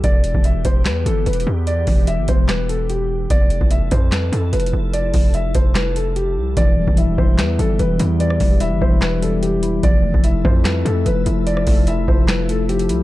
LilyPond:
<<
  \new Staff \with { instrumentName = "Grand piano" } { \time 4/4 \key e \phrygian \tempo 4 = 147 d''4 e''8 c''8 b'8 a'8 b'8 r8 | d''4 e''8 c''8 b'8 a'8 g'4 | d''4 e''8 c''8 b'8 a'8 b'8 r8 | d''4 e''8 c''8 b'8 a'8 g'4 |
d''4 e''8 c''8 b'8 a'8 b'8 r8 | d''4 e''8 c''8 b'8 a'8 g'4 | d''4 e''8 c''8 b'8 a'8 b'8 r8 | d''4 e''8 c''8 b'8 a'8 g'4 | }
  \new Staff \with { instrumentName = "Ambient pad" } { \time 4/4 \key e \phrygian <e b g'>1~ | <e b g'>1 | <f e' a'>1~ | <f e' a'>1 |
<e b g'>1~ | <e b g'>1 | <f a' e''>1~ | <f a' e''>1 | }
  \new Staff \with { instrumentName = "Tine electric piano" } { \time 4/4 \key e \phrygian r1 | r1 | r1 | r1 |
e8 g8 e'8 e''4 g8 e8 e'8 | e8 g8 e'8 e''4 g8 e8 e'8 | f8 a8 e'8 f'4 a8 f8 e'8 | f8 a8 e'8 f'4 a8 f8 e'8 | }
  \new Staff \with { instrumentName = "808-style bass" } { \clef bass \time 4/4 \key e \phrygian e,,8. e,,8. e,,8 e,8 g,,8 e,,8 e,8~ | e,8 e,,8. g,,16 e,,2~ e,,8 | f,,8. f,,8. f,4 f,8 f,,8 f,,8~ | f,,8 f,,4 f,,2 c,8 |
e,,8. e,,8. e,,8 e,8 g,,8 e,,8 e,8~ | e,8 e,,8. g,,16 e,,2~ e,,8 | f,,8. f,,8. f,4 f,8 f,,8 f,,8~ | f,,8 f,,4 f,,2 c,8 | }
  \new DrumStaff \with { instrumentName = "Drums" } \drummode { \time 4/4 <hh bd>8 hh16 bd16 hh8 <hh bd>8 <hc hh sn>8 hh8 \tuplet 3/2 { hh16 hh16 hh16 r16 r16 r16 } | hh8 <hho bd>8 hh8 <hh bd>8 <hc hh sn>8 hh8 hh4 | <hh bd>8 hh16 bd16 hh8 <hh bd>8 <hc hh sn>8 hh8 \tuplet 3/2 { hh16 hh16 hh16 r16 r16 r16 } | hh8 <hho bd>8 hh8 <hh bd>8 <hc hh sn>8 hh8 hh4 |
<hh bd>8. bd16 hh8 bd8 <hc hh sn>8 hh8 hh8 hh8 | hh16 ss16 <hho bd>8 hh8 bd8 <hc sn>8 hh8 hh8 hh8 | <hh bd>8. bd16 hh8 bd8 <hc hh sn>8 hh8 hh8 hh8 | hh16 ss16 <hho bd>8 hh8 bd8 <hc sn>8 hh8 hh16 hh16 hh8 | }
>>